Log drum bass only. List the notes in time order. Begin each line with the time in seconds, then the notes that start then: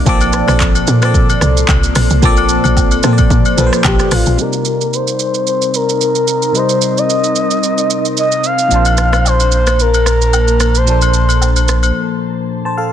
0.06 A#1
0.48 A#1
0.88 A#2
1.42 C2
1.69 C2
1.96 A#1
2.11 C2
2.23 A#1
2.65 A#1
3.04 A#2
3.30 A#2
3.58 A#1
3.85 A#1
4.12 A1
4.27 A#1